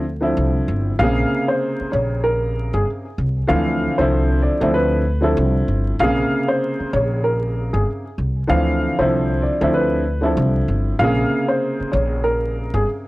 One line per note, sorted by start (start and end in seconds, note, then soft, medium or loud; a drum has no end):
0.00 0.33 D2 medium
0.20 0.92 D3 medium
0.20 0.93 F3 medium
0.20 0.93 C4 medium
0.20 0.94 E4 loud
0.37 0.60 C2 loud
0.68 0.92 G1 medium
0.99 1.23 A#1 loud
0.99 3.04 C3 medium
0.99 3.04 C#3 medium
0.99 3.04 A#3 medium
0.99 1.46 F5 loud
1.03 3.05 G#4 loud
1.48 1.90 C5 medium
1.80 muted upright bass stroke soft
1.92 2.70 A#1 medium
1.92 2.21 C#5 medium
2.24 2.70 A#4 medium
2.74 2.84 G1 medium
2.74 2.86 G#4 medium
3.18 3.42 C2 medium
3.47 3.86 D2 loud
3.47 3.93 D3 loud
3.47 3.94 E3 loud
3.47 3.94 F3 medium
3.47 3.94 C4 medium
3.47 3.95 F5 medium
3.98 4.46 C2 medium
3.98 4.55 D3 medium
3.98 4.56 F3 medium
3.98 4.56 C4 medium
3.98 4.56 E4 loud
3.98 4.40 C5 medium
4.42 4.71 D5 medium
4.60 5.33 D2 medium
4.60 5.02 D3 medium
4.60 5.02 F3 medium
4.60 5.03 C4 medium
4.60 5.03 E4 loud
4.74 5.21 B4 medium
5.21 5.93 D3 medium
5.21 5.93 F3 medium
5.21 5.93 C4 medium
5.21 5.94 E4 loud
5.21 5.36 A4 medium
5.37 5.60 C2 medium
5.68 5.92 G1 medium
5.99 6.23 A#1 loud
5.99 8.04 C3 medium
5.99 8.04 C#3 loud
5.99 8.04 A#3 medium
5.99 8.05 G#4 loud
5.99 6.46 F5 loud
6.48 6.90 C5 medium
6.80 muted upright bass stroke soft
6.93 7.70 A#1 medium
6.93 7.21 C#5 medium
7.24 7.70 A#4 medium
7.73 7.84 G1 medium
7.73 7.85 G#4 medium
8.18 8.42 C2 medium
8.47 8.86 D2 loud
8.47 8.93 D3 loud
8.47 8.94 E3 loud
8.47 8.94 F3 medium
8.47 8.94 C4 medium
8.47 8.96 F5 loud
8.99 9.46 C2 medium
8.99 9.55 D3 medium
8.99 9.56 F3 medium
8.99 9.56 C4 medium
8.99 9.56 E4 loud
8.99 9.40 C5 medium
9.42 9.71 D5 medium
9.61 10.33 D2 loud
9.61 10.02 D3 medium
9.61 10.03 F3 medium
9.61 10.03 C4 medium
9.61 10.03 E4 loud
9.74 10.21 B4 medium
10.21 10.93 D3 medium
10.21 10.93 F3 medium
10.21 10.93 C4 medium
10.21 10.94 E4 loud
10.26 10.37 A4 medium
10.37 10.60 C2 loud
10.68 10.92 G1 medium
10.99 11.23 A#1 loud
10.99 13.05 C3 medium
10.99 13.04 C#3 loud
10.99 13.04 A#3 medium
10.99 11.46 F5 loud
11.03 13.05 G#4 loud
11.48 11.90 C5 medium
11.80 muted upright bass stroke soft
11.92 12.70 A#1 medium
11.92 12.20 C#5 medium
12.24 12.70 A#4 medium
12.74 12.84 G1 medium
12.74 12.86 G#4 medium